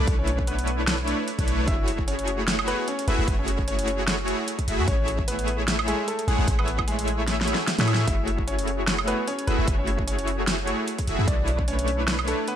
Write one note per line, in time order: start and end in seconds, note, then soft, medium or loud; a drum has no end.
0.00 0.14 A3 medium
0.00 0.14 A4 medium
0.08 1.14 B1 medium
0.08 1.16 A3 medium
0.08 1.16 D4 medium
0.08 1.16 E4 medium
0.08 1.16 C#5 medium
0.08 kick loud
0.08 closed hi-hat medium
0.19 0.44 C#4 medium
0.19 0.44 C#5 medium
0.27 closed hi-hat medium
0.39 kick medium
0.47 0.74 B3 medium
0.47 0.74 B4 medium
0.47 closed hi-hat medium
0.59 closed hi-hat medium
0.67 closed hi-hat medium
0.87 snare loud
0.87 closed hi-hat medium
1.08 closed hi-hat medium
1.28 closed hi-hat medium
1.39 1.69 B1 loud
1.39 1.66 A3 medium
1.39 1.66 D4 medium
1.39 1.66 E4 medium
1.39 1.66 B4 medium
1.39 1.66 C#5 medium
1.39 kick medium
1.39 closed hi-hat medium
1.48 closed hi-hat medium
1.68 2.74 F#1 loud
1.68 2.76 A3 medium
1.68 2.76 E4 medium
1.68 2.03 E4 medium
1.68 2.76 F#4 medium
1.68 2.76 G#4 medium
1.68 2.03 E5 loud
1.68 kick loud
1.68 closed hi-hat medium
1.88 closed hi-hat medium
1.99 kick medium
2.08 2.34 C#4 medium
2.08 2.34 C#5 medium
2.08 closed hi-hat medium
2.19 closed hi-hat medium
2.28 closed hi-hat medium
2.48 snare loud
2.48 closed hi-hat medium
2.59 high woodblock medium
2.68 2.85 B3 medium
2.68 2.85 B4 medium
2.68 closed hi-hat medium
2.88 3.05 C#4 medium
2.88 3.05 C#5 medium
2.88 closed hi-hat medium
2.99 closed hi-hat medium
3.08 3.16 F#1 medium
3.08 3.16 A3 medium
3.08 3.34 B3 medium
3.08 3.16 E4 medium
3.08 3.16 F#4 medium
3.08 3.16 G#4 medium
3.08 3.34 B4 medium
3.08 3.16 E5 loud
3.08 closed hi-hat medium
3.19 3.26 F#1 loud
3.19 3.26 A3 medium
3.19 3.26 E4 medium
3.19 3.26 F#4 medium
3.19 3.26 G#4 medium
3.19 3.26 E5 loud
3.28 4.34 F#1 medium
3.28 4.36 A3 medium
3.28 4.36 E4 medium
3.28 4.36 F#4 medium
3.28 4.36 G#4 medium
3.28 4.36 C#5 medium
3.28 kick loud
3.28 closed hi-hat medium
3.39 3.64 C#4 medium
3.39 3.64 C#5 medium
3.48 closed hi-hat medium
3.59 kick medium
3.68 3.94 C#4 medium
3.68 3.94 C#5 medium
3.68 closed hi-hat medium
3.79 closed hi-hat medium
3.88 closed hi-hat medium
4.08 snare loud
4.08 closed hi-hat medium
4.28 closed hi-hat medium
4.48 closed hi-hat medium
4.59 kick medium
4.59 closed hi-hat medium
4.68 4.80 F#1 medium
4.68 4.76 A3 medium
4.68 4.76 E4 medium
4.68 4.76 F#4 medium
4.68 4.76 G#4 medium
4.68 4.76 E5 loud
4.68 closed hi-hat medium
4.79 4.86 F#2 loud
4.79 4.85 A3 medium
4.79 4.85 E4 medium
4.79 4.85 F#4 medium
4.79 4.85 G#4 medium
4.79 4.85 E5 loud
4.88 5.94 A1 medium
4.88 5.23 C#4 medium
4.88 5.96 C#5 medium
4.88 5.23 C#5 loud
4.88 kick loud
4.88 closed hi-hat medium
5.08 closed hi-hat medium
5.19 kick medium
5.28 5.54 B3 medium
5.28 5.54 B4 medium
5.28 closed hi-hat medium
5.39 closed hi-hat medium
5.48 closed hi-hat medium
5.68 snare loud
5.68 closed hi-hat medium
5.79 high woodblock medium
5.88 6.05 G#3 medium
5.88 6.05 G#4 medium
5.88 closed hi-hat medium
6.08 6.25 A3 medium
6.08 6.25 A4 medium
6.08 closed hi-hat medium
6.19 closed hi-hat medium
6.28 6.37 A1 loud
6.28 6.54 G#3 medium
6.28 6.36 A3 medium
6.28 6.36 E4 medium
6.28 6.36 G#4 medium
6.28 6.54 G#4 medium
6.28 6.36 C#5 medium
6.28 6.36 F#5 loud
6.28 closed hi-hat medium
6.39 6.46 A1 medium
6.39 6.46 A3 medium
6.39 6.46 E4 medium
6.39 6.45 G#4 medium
6.39 6.46 C#5 medium
6.39 6.45 F#5 loud
6.48 7.54 A1 loud
6.48 7.56 A3 medium
6.48 7.56 G#4 medium
6.48 kick loud
6.48 closed hi-hat medium
6.59 6.84 B3 medium
6.59 6.84 B4 medium
6.59 high woodblock medium
6.68 closed hi-hat medium
6.79 kick medium
6.79 high woodblock medium
6.88 7.14 G#3 medium
6.88 7.14 G#4 loud
6.88 closed hi-hat medium
6.99 closed hi-hat medium
7.08 closed hi-hat medium
7.28 snare medium
7.28 closed hi-hat medium
7.28 swell medium
7.41 snare medium
7.48 closed hi-hat medium
7.54 snare medium
7.68 snare medium
7.68 closed hi-hat medium
7.79 8.06 A2 loud
7.79 8.06 A3 medium
7.79 8.06 E4 medium
7.79 8.06 G#4 medium
7.79 8.06 C#5 medium
7.79 8.06 E5 medium
7.79 snare loud
7.79 closed hi-hat medium
7.88 closed hi-hat medium
7.88 high woodblock medium
7.94 snare loud
8.07 9.14 F#1 medium
8.07 9.16 A3 medium
8.07 8.42 E4 medium
8.07 9.16 E4 medium
8.07 9.16 F#4 medium
8.07 9.16 G#4 medium
8.07 9.16 C#5 loud
8.07 8.42 E5 loud
8.07 kick loud
8.07 closed hi-hat medium
8.28 closed hi-hat medium
8.39 kick medium
8.48 8.74 C#4 medium
8.48 8.74 C#5 loud
8.48 closed hi-hat medium
8.59 closed hi-hat medium
8.68 closed hi-hat medium
8.88 snare loud
8.88 closed hi-hat medium
8.99 high woodblock medium
9.08 9.25 B3 medium
9.08 9.25 B4 medium
9.08 closed hi-hat medium
9.28 9.45 C#4 medium
9.28 9.45 C#5 medium
9.28 closed hi-hat medium
9.39 closed hi-hat medium
9.47 9.56 F#1 loud
9.47 9.56 A3 medium
9.47 9.74 B3 medium
9.47 9.56 E4 medium
9.47 9.56 F#4 medium
9.47 9.56 G#4 medium
9.47 9.74 B4 medium
9.47 9.56 E5 loud
9.47 closed hi-hat medium
9.59 9.66 F#1 loud
9.59 9.66 A3 medium
9.59 9.65 E4 medium
9.59 9.65 F#4 medium
9.59 9.65 G#4 medium
9.59 9.65 E5 loud
9.68 10.74 F#1 loud
9.68 10.76 A3 medium
9.68 10.76 E4 medium
9.68 10.76 F#4 medium
9.68 10.76 G#4 medium
9.68 10.76 C#5 medium
9.68 kick loud
9.68 closed hi-hat medium
9.78 10.04 C#4 medium
9.78 10.04 C#5 medium
9.87 closed hi-hat medium
9.99 kick medium
10.07 10.34 C#4 medium
10.07 10.34 C#5 medium
10.07 closed hi-hat medium
10.19 closed hi-hat medium
10.28 closed hi-hat medium
10.47 snare loud
10.47 closed hi-hat medium
10.67 closed hi-hat medium
10.88 closed hi-hat medium
10.99 kick medium
10.99 closed hi-hat medium
11.07 11.16 F#1 loud
11.07 11.16 A3 medium
11.07 11.16 E4 medium
11.07 11.16 F#4 medium
11.07 11.16 G#4 medium
11.07 11.16 E5 loud
11.07 closed hi-hat medium
11.19 11.26 F#2 loud
11.19 11.26 A3 medium
11.19 11.26 E4 medium
11.19 11.26 F#4 medium
11.19 11.26 G#4 medium
11.19 11.26 E5 loud
11.27 12.34 B1 medium
11.27 12.36 A3 medium
11.27 11.62 D4 medium
11.27 12.36 D4 medium
11.27 12.36 E4 medium
11.27 12.36 B4 medium
11.27 12.36 C#5 medium
11.27 11.62 D5 loud
11.27 kick loud
11.27 closed hi-hat medium
11.48 closed hi-hat medium
11.59 kick medium
11.68 11.94 C#4 medium
11.68 11.94 C#5 medium
11.68 closed hi-hat medium
11.79 closed hi-hat medium
11.88 closed hi-hat medium
12.08 snare loud
12.08 closed hi-hat medium
12.19 high woodblock medium
12.28 12.45 A3 medium
12.28 12.45 A4 medium
12.28 closed hi-hat medium
12.48 12.56 B3 medium
12.48 12.56 B4 medium
12.48 closed hi-hat medium